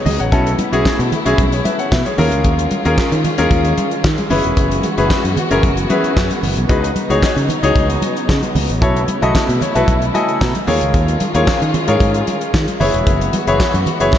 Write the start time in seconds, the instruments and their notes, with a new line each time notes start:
Already playing: string section C#3 F#3 B3 D#4
0.05 fretless electric bass C#2, grand piano G#4 D#5, open hi-hat, low conga
0.19 fretless electric bass A1, grand piano C#5 F#5, closed hi-hat
0.32 fretless electric bass B1, string section A3 E4, grand piano C#4 E4 F#4 A4, kick, closed hi-hat
0.47 closed hi-hat
0.59 closed hi-hat, high conga
0.72 fretless electric bass B1, grand piano C#4 E4 F#4 G#4, closed hi-hat
0.85 muted fretless electric bass stroke, kick, snare, clap, muted conga
0.99 fretless electric bass B2, closed hi-hat
1.12 closed hi-hat, low conga
1.25 fretless electric bass B1, grand piano C#4 E4 F#4 G#4, closed hi-hat
1.38 fretless electric bass B1, kick, closed hi-hat, muted conga, high conga
1.52 grand piano G#4 C#5, closed hi-hat
1.65 grand piano B4 E5, closed hi-hat, muted conga, high conga
1.79 grand piano C#5 F#5, closed hi-hat
1.91 fretless electric bass B2, grand piano B4 E5, kick, snare, clap, muted conga
2.06 grand piano G#4 C#5, closed hi-hat, high conga
2.18 fretless electric bass D#2, string section D#3 G#3 C#4 F4, grand piano C#4 F4 G#4 A#4, open hi-hat, muted conga, low conga
2.32 fretless electric bass C#2, closed hi-hat
2.44 fretless electric bass D#2, kick, closed hi-hat, muted conga
2.59 closed hi-hat
2.71 closed hi-hat, high conga
2.85 fretless electric bass D#2, grand piano C#4 F4 G#4 A#4, closed hi-hat
2.98 kick, snare, clap, muted conga
3.12 fretless electric bass D#3, closed hi-hat
3.24 closed hi-hat, muted conga, low conga
3.38 fretless electric bass D#2, grand piano C#4 F4 G#4 A#4, closed hi-hat
3.51 fretless electric bass D#2, kick, closed hi-hat, high conga
3.65 closed hi-hat
3.78 closed hi-hat, muted conga, high conga
3.91 closed hi-hat
4.04 fretless electric bass D#3, kick, snare, clap
4.18 closed hi-hat, high conga
4.30 fretless electric bass F#1, string section E3 B3 F#4, grand piano C#4 E4 G#4 B4, open hi-hat, low conga
4.44 fretless electric bass E1, closed hi-hat
4.57 fretless electric bass F#1, kick, closed hi-hat
4.71 closed hi-hat
4.83 closed hi-hat, high conga
4.97 fretless electric bass F#1, grand piano C#4 E4 G#4 B4, closed hi-hat
5.10 kick, snare, clap
5.24 fretless electric bass F#2, closed hi-hat
5.37 closed hi-hat, low conga
5.51 fretless electric bass F#1, grand piano C#4 E4 G#4 A#4, closed hi-hat
5.63 fretless electric bass F#1, kick, closed hi-hat, muted conga, high conga
5.77 closed hi-hat
5.89 grand piano C#4 E4 G#4 B4, closed hi-hat, muted conga, high conga
6.04 closed hi-hat, high conga
6.17 fretless electric bass F#2, kick, snare, clap
6.31 closed hi-hat, high conga
6.43 fretless electric bass F#1, open hi-hat, muted conga, low conga
6.57 fretless electric bass B1, closed hi-hat
6.69 fretless electric bass C#2, string section C#3 F#3 D#4, grand piano D#4 F#4 G#4 B4, kick, closed hi-hat, muted conga
6.84 closed hi-hat
6.96 closed hi-hat, muted conga, high conga
7.10 fretless electric bass C#2, grand piano D#4 F#4 G#4 C#5, closed hi-hat
7.23 kick, snare, clap
7.36 fretless electric bass C#3, closed hi-hat
7.49 closed hi-hat, low conga
7.63 fretless electric bass C#2, grand piano D#4 F#4 G#4 C#5, closed hi-hat
7.75 fretless electric bass C#2, kick, closed hi-hat, high conga
7.90 closed hi-hat
8.02 closed hi-hat, high conga
8.17 closed hi-hat
8.29 fretless electric bass C#3, kick, snare, clap
8.43 closed hi-hat, high conga
8.55 fretless electric bass C#2, open hi-hat, low conga
8.69 fretless electric bass A1, closed hi-hat
8.81 fretless electric bass B1, string section A3 E4, grand piano E4 F#4 A4 C#5, kick, closed hi-hat
8.96 closed hi-hat
9.08 closed hi-hat, high conga
9.22 fretless electric bass B1, grand piano E4 F#4 A4 D#5, closed hi-hat
9.35 muted fretless electric bass stroke, kick, snare, clap, muted conga
9.49 fretless electric bass B2, closed hi-hat
9.61 grand piano C#5, closed hi-hat, muted conga, low conga
9.75 fretless electric bass B1, grand piano E4 F#4 A4 B4, closed hi-hat
9.88 fretless electric bass B1, grand piano E5, kick, closed hi-hat, muted conga, high conga
10.02 closed hi-hat
10.14 grand piano E4 F#4 A4 D#5 G#5, closed hi-hat, high conga
10.28 closed hi-hat
10.41 fretless electric bass B2, grand piano A#5, kick, snare, clap
10.55 closed hi-hat, high conga
10.67 fretless electric bass D#2, string section D#3 G#3 C#4 F4, grand piano F4 G#4 A#4 C#5, open hi-hat, low conga
10.81 fretless electric bass C#2, closed hi-hat
10.94 fretless electric bass D#2, kick, closed hi-hat, muted conga
11.08 closed hi-hat
11.20 closed hi-hat, muted conga, high conga
11.34 fretless electric bass D#2, grand piano F4 G#4 A#4 C#5, closed hi-hat
11.47 muted fretless electric bass stroke, kick, snare, clap, muted conga
11.62 fretless electric bass D#3, closed hi-hat
11.74 closed hi-hat, muted conga, low conga
11.88 fretless electric bass G#2, grand piano F4 G#4 A#4 C#5, closed hi-hat
12.00 fretless electric bass G#2, kick, closed hi-hat, muted conga, high conga
12.14 closed hi-hat
12.27 closed hi-hat, high conga
12.41 closed hi-hat
12.53 fretless electric bass D#3, kick, snare, clap, muted conga
12.68 closed hi-hat, high conga
12.80 fretless electric bass F#1, string section E3 B3 F#4, grand piano E4 G#4 B4 C#5, open hi-hat, muted conga, low conga
12.94 fretless electric bass E1, closed hi-hat
13.07 fretless electric bass F#1, kick, closed hi-hat
13.21 closed hi-hat
13.33 closed hi-hat, muted conga, high conga
13.47 fretless electric bass F#1, grand piano E4 G#4 B4 C#5, closed hi-hat
13.60 muted fretless electric bass stroke, kick, snare, clap, muted conga
13.74 fretless electric bass F#2, closed hi-hat
13.86 closed hi-hat, muted conga, low conga
14.00 fretless electric bass F#1, grand piano E4 G#4 B4 C#5, closed hi-hat
14.13 kick, snare, high conga